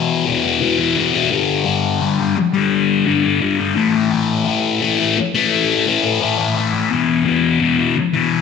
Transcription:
0.00 0.26 B2 medium
0.00 0.27 E3 medium
0.25 0.60 E2 medium
0.25 0.46 B2 medium
0.25 0.43 E3 medium
0.44 0.61 B2 medium
0.44 0.62 E3 medium
0.61 0.96 E2 medium
0.61 0.80 B2 medium
0.61 0.77 E3 medium
0.79 0.97 B2 medium
0.79 0.98 E3 medium
0.97 1.30 E2 medium
0.97 1.14 B2 medium
0.97 1.12 E3 medium
1.13 1.31 B2 medium
1.13 1.30 E3 medium
1.31 1.63 G2 medium
1.31 1.65 D3 medium
1.31 1.66 G3 medium
1.64 2.00 G2 medium
1.64 2.01 D3 medium
1.64 2.02 G3 medium
2.01 2.35 G2 medium
2.01 2.21 D3 medium
2.01 2.19 G3 medium
2.20 2.36 D3 medium
2.20 2.37 G3 medium
2.37 muted distorted electric guitar stroke soft
2.54 3.05 D3 medium
2.54 3.06 G3 medium
3.05 3.39 G2 medium
3.05 3.25 D3 medium
3.05 3.22 G3 medium
3.23 3.40 D3 medium
3.23 3.42 G3 medium
3.40 3.74 G2 medium
3.40 3.59 D3 medium
3.40 3.56 G3 medium
3.58 3.74 D3 medium
3.58 3.74 G3 medium
3.75 4.10 A2 medium
3.75 3.95 E3 medium
3.75 3.92 A3 medium
3.93 4.12 E3 medium
3.93 4.13 A3 medium
4.11 4.44 A2 medium
4.11 4.47 E3 medium
4.11 4.47 A3 medium
4.45 4.80 A2 medium
4.45 4.82 E3 medium
4.45 4.83 A3 medium
4.81 5.17 A2 medium
4.81 5.01 E3 medium
4.81 4.98 A3 medium
4.99 5.18 E3 medium
4.99 5.18 A3 medium
5.18 muted distorted electric guitar stroke soft
5.35 5.88 E3 medium
5.35 5.88 A3 medium
5.86 6.19 A2 medium
5.86 6.06 E3 medium
5.86 6.02 A3 medium
6.04 6.21 E3 medium
6.04 6.22 A3 medium
6.20 6.54 A2 medium
6.20 6.40 E3 medium
6.20 6.37 A3 medium
6.38 6.56 E3 medium
6.38 6.56 A3 medium
6.55 6.89 A2 medium
6.55 6.75 E3 medium
6.55 6.72 A3 medium
6.73 6.92 E3 medium
6.73 6.90 A3 medium
6.90 7.24 E2 medium
6.90 7.25 B2 medium
6.90 7.28 E3 medium
7.25 7.59 E2 medium
7.25 7.60 B2 medium
7.25 7.62 E3 medium
7.60 7.96 E2 medium
7.60 7.80 B2 medium
7.60 7.78 E3 medium
7.78 7.95 B2 medium
7.78 7.96 E3 medium
7.96 muted distorted electric guitar stroke soft
8.13 8.41 B2 medium
8.13 8.41 E3 medium

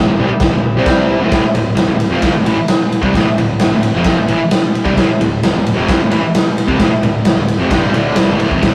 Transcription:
0.08 0.17 D1 medium
0.08 0.18 D2 medium
0.08 0.18 A2 medium
0.18 0.28 C2 loud
0.18 0.29 C3 loud
0.18 0.29 G3 loud
0.29 muted fingered electric bass stroke soft
0.29 muted distorted electric guitar stroke medium
0.40 0.51 D1 medium
0.40 0.52 D2 medium
0.40 0.52 A2 medium
0.40 kick loud
0.40 snare loud
0.40 crash medium
0.51 0.73 D1 medium
0.51 0.71 D2 medium
0.51 0.71 A2 medium
0.75 1.17 C2 loud
0.75 1.20 C3 medium
0.75 1.21 G3 loud
0.75 1.21 C4 loud
0.86 kick loud
0.86 snare loud
0.86 crash medium
1.19 1.30 D1 loud
1.19 1.30 D2 medium
1.19 1.32 A2 loud
1.32 1.42 D1 medium
1.32 1.42 D2 medium
1.32 1.43 A2 medium
1.32 kick medium
1.32 snare loud
1.32 ride medium
1.43 muted fingered electric bass stroke soft
1.43 muted distorted electric guitar stroke medium
1.55 1.76 D1 medium
1.55 1.73 D2 medium
1.55 1.73 A2 medium
1.55 ride medium
1.75 1.88 D1 medium
1.75 1.87 D2 medium
1.75 1.87 A2 medium
1.75 snare loud
1.75 ride medium
1.88 2.10 D1 medium
1.88 2.06 D2 medium
1.88 2.07 A2 medium
2.00 ride medium
2.10 2.33 F1 medium
2.10 2.33 F2 medium
2.10 2.33 C3 medium
2.10 2.34 F3 loud
2.22 kick loud
2.22 snare loud
2.22 ride loud
2.33 2.45 D1 medium
2.33 2.45 D2 medium
2.33 2.45 A2 medium
2.46 2.57 A1 medium
2.46 2.57 A2 medium
2.46 2.57 E3 loud
2.46 ride medium
2.57 muted distorted electric guitar stroke medium
2.57 muted fingered electric bass stroke soft
2.68 snare loud
2.68 ride loud
2.92 ride medium
3.02 3.14 C2 loud
3.02 3.13 C3 medium
3.02 3.14 G3 medium
3.02 kick medium
3.14 3.25 D1 medium
3.14 3.25 D2 medium
3.14 3.25 A2 medium
3.14 kick medium
3.14 snare loud
3.14 ride medium
3.26 muted fingered electric bass stroke soft
3.26 muted distorted electric guitar stroke soft
3.36 3.58 D1 medium
3.36 3.56 D2 medium
3.36 3.56 A2 medium
3.36 ride medium
3.59 3.70 D1 medium
3.59 3.70 D2 medium
3.59 3.71 A2 medium
3.59 snare loud
3.59 ride medium
3.71 3.93 D1 medium
3.71 3.90 D2 medium
3.71 3.90 A2 medium
3.83 ride medium
3.94 4.15 F1 medium
3.94 4.15 F2 medium
3.94 4.16 C3 loud
3.94 4.17 F3 loud
4.04 kick loud
4.04 snare loud
4.04 ride medium
4.16 4.28 D1 medium
4.16 4.27 D2 medium
4.16 4.26 A2 medium
4.27 4.39 A1 medium
4.27 4.37 A2 medium
4.27 4.39 E3 medium
4.27 ride medium
4.38 muted distorted electric guitar stroke medium
4.38 muted fingered electric bass stroke soft
4.51 snare loud
4.51 ride loud
4.75 ride medium
4.84 4.97 C2 loud
4.84 4.95 C3 medium
4.84 4.96 G3 loud
4.84 kick medium
4.96 5.08 D1 loud
4.96 5.07 D2 medium
4.96 5.08 A2 loud
4.96 kick medium
4.96 snare loud
4.96 ride medium
5.08 muted distorted electric guitar stroke medium
5.08 muted fingered electric bass stroke soft
5.20 5.42 D1 medium
5.20 5.38 D2 medium
5.20 5.39 A2 medium
5.20 ride medium
5.43 5.55 D1 medium
5.43 5.53 D2 medium
5.43 5.53 A2 medium
5.43 snare loud
5.43 ride medium
5.54 5.76 D1 medium
5.54 5.73 D2 medium
5.54 5.73 A2 medium
5.66 ride medium
5.74 5.99 F1 medium
5.74 5.98 F2 medium
5.74 5.99 C3 medium
5.74 5.99 F3 loud
5.89 kick loud
5.89 snare loud
5.89 ride loud
6.00 6.11 D1 medium
6.00 6.10 D2 medium
6.00 6.09 A2 medium
6.11 6.23 A1 medium
6.11 6.22 A2 medium
6.11 6.23 E3 medium
6.11 ride medium
6.22 muted distorted electric guitar stroke medium
6.22 muted fingered electric bass stroke soft
6.35 snare loud
6.35 ride loud
6.58 ride medium
6.67 6.79 C2 medium
6.67 6.77 C3 medium
6.67 6.79 G3 loud
6.67 kick medium
6.77 6.91 D1 medium
6.77 6.89 D2 medium
6.77 6.90 A2 loud
6.77 kick medium
6.77 snare loud
6.77 ride medium
6.90 muted distorted electric guitar stroke medium
6.90 muted fingered electric bass stroke soft
7.02 7.24 D1 medium
7.02 7.21 D2 medium
7.02 7.21 A2 medium
7.02 ride medium
7.25 7.36 D1 medium
7.25 7.36 D2 medium
7.25 7.35 A2 medium
7.25 snare loud
7.25 ride loud
7.37 7.58 D1 medium
7.37 7.56 D2 medium
7.37 7.55 A2 medium
7.48 ride medium
7.58 7.70 F1 medium
7.58 7.70 F2 medium
7.58 7.71 C3 loud
7.71 7.93 G1 medium
7.71 7.92 G2 medium
7.71 7.93 D3 medium
7.71 7.94 G3 loud
7.71 kick loud
7.71 snare loud
7.71 ride medium
7.93 8.16 D1 medium
7.93 8.16 D2 medium
7.93 8.17 A2 medium
7.93 8.17 D3 loud
7.93 ride medium
8.16 8.28 C2 medium
8.16 8.28 C3 medium
8.16 8.28 G3 loud
8.16 snare loud
8.16 ride loud
8.29 8.40 G1 medium
8.29 8.40 G2 medium
8.29 8.40 D3 medium
8.40 8.51 D1 medium
8.40 8.50 D2 loud
8.40 8.52 A2 loud
8.40 ride medium
8.51 8.62 F1 medium
8.51 8.62 F2 medium
8.51 8.63 C3 medium
8.51 kick medium
8.63 8.74 D1 loud
8.63 8.74 D2 medium
8.63 8.74 A2 loud
8.63 kick medium
8.63 snare loud
8.63 ride medium

